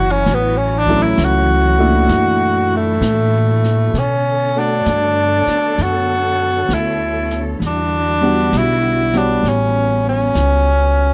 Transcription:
0.00 0.24 F#1 medium
0.00 3.90 E3 medium
0.00 0.88 F#3 medium
0.00 0.89 A3 medium
0.00 0.89 C#4 medium
0.00 0.90 E4 medium
0.00 2.05 E4 medium
0.00 0.13 F#4 medium
0.00 3.91 F#4 medium
0.00 2.06 C#5 medium
0.11 0.36 C#4 medium
0.26 1.15 A1 medium
0.26 brush sweep soft
0.26 snare soft
0.34 0.59 B3 medium
0.57 0.80 C#4 medium
0.78 1.04 D4 medium
0.87 1.15 F#3 medium
0.87 1.16 A3 medium
0.87 1.16 C#4 medium
0.87 1.16 E4 medium
0.87 kick medium
1.02 1.26 E4 medium
1.18 2.07 C#2 medium
1.18 snare medium
1.18 hi-hat pedal medium
1.25 2.74 F#4 medium
1.78 2.96 A#2 medium
1.78 2.96 A3 medium
1.78 2.96 D4 medium
1.78 2.96 E4 medium
2.09 2.99 F#2 medium
2.09 3.92 A3 medium
2.09 3.93 E4 medium
2.09 brush sweep soft
2.09 snare soft
2.77 4.00 A3 medium
3.01 3.91 A2 medium
3.01 snare medium
3.01 hi-hat pedal medium
3.64 snare soft
3.93 4.83 B2 medium
3.93 9.40 D3 medium
3.93 7.57 B3 medium
3.93 7.57 A4 medium
3.93 7.58 C#5 medium
3.93 brush sweep soft
3.93 snare soft
3.99 4.61 C#4 medium
4.55 5.72 A3 medium
4.55 5.72 D4 soft
4.55 5.84 D4 medium
4.55 5.73 F#4 medium
4.55 5.72 C#5 soft
4.86 5.43 G2 medium
4.86 snare medium
4.86 hi-hat pedal soft
5.47 muted upright bass stroke soft
5.47 snare soft
5.78 6.67 F#2 medium
5.78 brush sweep soft
5.78 snare soft
5.82 6.76 F#4 medium
6.69 7.58 D2 medium
6.69 snare medium
6.69 hi-hat pedal soft
6.74 7.45 E4 medium
7.31 snare soft
7.60 8.49 E2 medium
7.60 9.42 G3 medium
7.60 9.42 E4 medium
7.60 9.43 F#4 medium
7.60 brush sweep soft
7.60 snare soft
7.67 8.59 D4 medium
8.21 8.49 G3 medium
8.21 8.50 B3 medium
8.21 8.50 D4 medium
8.21 8.50 F#4 medium
8.52 9.41 B1 medium
8.52 snare medium
8.52 hi-hat pedal medium
8.57 9.19 E4 medium
9.13 10.29 G3 medium
9.13 10.30 B3 soft
9.13 10.30 F#4 medium
9.13 10.30 C#5 soft
9.13 snare soft
9.17 9.50 D4 medium
9.43 10.32 A1 medium
9.43 11.14 B3 medium
9.43 11.14 C#4 medium
9.43 brush sweep soft
9.43 snare soft
9.49 10.07 C#4 medium
10.09 11.14 C#4 medium
10.35 11.14 C#2 medium
10.35 snare medium
10.35 hi-hat pedal soft

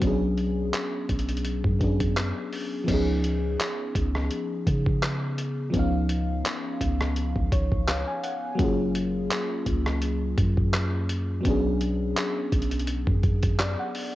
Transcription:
0.00 0.71 B1 loud
0.00 1.75 F#3 medium
0.00 1.76 B3 medium
0.00 1.77 C#4 medium
0.00 kick loud
0.00 closed hi-hat medium
0.05 1.79 D4 medium
0.05 1.80 G#4 medium
0.37 closed hi-hat medium
0.73 clap loud
0.73 closed hi-hat medium
1.09 1.62 B1 loud
1.09 kick loud
1.09 closed hi-hat medium
1.19 closed hi-hat medium
1.29 closed hi-hat medium
1.37 closed hi-hat medium
1.45 closed hi-hat medium
1.64 2.33 F#2 loud
1.64 kick medium
1.79 2.87 F#3 medium
1.79 2.85 B3 medium
1.79 2.87 C#4 soft
1.79 2.89 D4 medium
1.79 kick loud
1.79 closed hi-hat soft
1.84 2.89 G#4 medium
2.00 kick loud
2.00 closed hi-hat medium
2.17 cross-stick medium
2.17 clap loud
2.17 closed hi-hat medium
2.53 open hi-hat medium
2.84 5.68 F3 medium
2.84 5.69 B3 medium
2.84 kick loud
2.88 3.57 C#2 loud
2.88 5.70 C#4 medium
2.88 5.71 D#4 medium
2.88 closed hi-hat medium
2.88 crash loud
2.94 5.72 G#4 medium
3.24 closed hi-hat medium
3.60 clap loud
3.60 closed hi-hat medium
3.95 4.30 C#2 loud
3.95 kick loud
3.95 closed hi-hat medium
4.15 cross-stick medium
4.31 closed hi-hat medium
4.67 5.70 C#3 loud
4.67 kick loud
4.67 closed hi-hat medium
4.86 kick loud
5.03 cross-stick medium
5.03 clap loud
5.03 closed hi-hat medium
5.38 closed hi-hat medium
5.70 8.54 F3 medium
5.70 8.55 B3 medium
5.70 kick loud
5.70 closed hi-hat medium
5.74 6.42 C#2 loud
5.74 8.56 C#4 medium
5.74 8.57 D#4 medium
5.79 7.87 F5 medium
6.09 closed hi-hat medium
6.45 clap loud
6.45 closed hi-hat medium
6.81 7.34 C#2 loud
6.81 kick medium
6.81 closed hi-hat medium
7.01 cross-stick medium
7.16 closed hi-hat medium
7.36 8.04 C#2 loud
7.36 kick loud
7.52 7.86 C#5 medium
7.52 kick loud
7.52 closed hi-hat medium
7.72 kick loud
7.88 8.06 F5 medium
7.88 cross-stick medium
7.88 clap loud
7.88 closed hi-hat medium
8.07 8.23 G#5 medium
8.23 8.57 F#5 medium
8.23 closed hi-hat medium
8.55 11.39 F#3 medium
8.55 11.40 A#3 medium
8.59 9.28 F#1 loud
8.59 11.41 C#4 medium
8.59 11.42 F4 medium
8.59 kick loud
8.59 closed hi-hat medium
8.64 11.43 G#4 medium
8.95 closed hi-hat medium
9.31 clap loud
9.31 closed hi-hat medium
9.66 10.35 C#2 loud
9.66 kick loud
9.66 closed hi-hat medium
9.86 cross-stick medium
10.02 closed hi-hat medium
10.38 11.41 F#2 loud
10.38 kick loud
10.38 closed hi-hat medium
10.57 kick loud
10.73 cross-stick medium
10.73 clap loud
10.73 closed hi-hat medium
11.09 closed hi-hat medium
11.41 14.15 F#3 medium
11.41 14.15 B3 medium
11.45 12.14 B1 loud
11.45 14.15 C#4 medium
11.45 14.15 D4 medium
11.45 kick loud
11.45 closed hi-hat medium
11.50 14.15 G#4 medium
11.81 closed hi-hat medium
12.17 clap loud
12.17 closed hi-hat medium
12.52 13.05 B1 loud
12.52 kick loud
12.52 closed hi-hat medium
12.62 closed hi-hat medium
12.71 closed hi-hat medium
12.80 closed hi-hat medium
12.87 closed hi-hat medium
13.07 13.76 F#2 loud
13.07 kick loud
13.23 kick loud
13.23 closed hi-hat soft
13.43 kick loud
13.43 closed hi-hat medium
13.59 13.78 D5 medium
13.59 cross-stick medium
13.59 clap loud
13.59 closed hi-hat medium
13.79 14.15 F#5 medium
13.95 open hi-hat medium

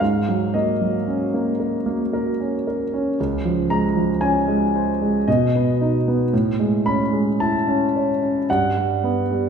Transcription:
0.00 3.14 G#2 soft
0.00 0.54 F5 medium
0.29 0.70 F#3 soft
0.54 0.96 A#3 soft
0.54 2.65 D#5 medium
0.81 1.23 F#3 soft
1.07 1.49 C#4 soft
1.34 1.75 A#3 soft
1.60 2.01 A#4 soft
1.86 2.28 A#3 soft
2.13 2.55 A#4 soft
2.40 2.82 C#4 soft
2.67 3.09 A#4 soft
2.94 3.19 C#4 soft
3.20 5.24 C#2 soft
3.45 3.85 F3 soft
3.70 4.11 G#3 soft
3.70 4.21 A#5 medium
3.96 4.37 F3 soft
4.21 4.63 C#4 soft
4.21 5.27 G#5 medium
4.48 4.90 G#3 soft
4.76 5.18 C5 soft
5.01 5.28 G#3 soft
5.28 6.30 B2 soft
5.28 6.33 D#5 medium
5.55 5.97 B3 soft
5.81 6.22 D#4 soft
6.08 6.33 B3 soft
6.33 8.44 A2 medium
6.59 7.01 G#3 soft
6.86 7.28 C#4 soft
6.86 7.39 B5 medium
7.12 7.55 G#3 soft
7.40 7.83 E4 soft
7.40 8.48 A5 medium
7.68 8.11 C#4 soft
7.96 8.38 C#5 soft
8.22 8.48 C#4 soft
8.50 9.49 G2 soft
8.50 9.49 F#5 medium
8.77 9.20 G3 soft
9.04 9.48 B3 soft
9.31 9.49 G3 soft

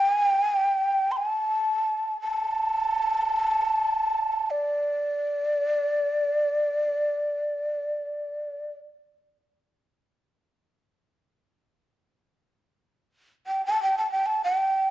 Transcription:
0.00 0.11 G5 loud
0.11 0.26 G#5 loud
0.26 0.41 G5 loud
0.41 0.55 G#5 loud
0.55 1.13 G5 loud
1.11 1.18 C6 medium
1.17 2.20 A5 medium
2.21 4.52 A5 medium
4.51 8.70 D5 medium
13.47 13.65 G5 medium
13.66 13.81 A5 medium
13.83 13.96 G5 medium
13.98 14.10 A5 medium
14.12 14.28 G5 medium
14.26 14.42 A5 medium
14.44 14.90 G5 medium

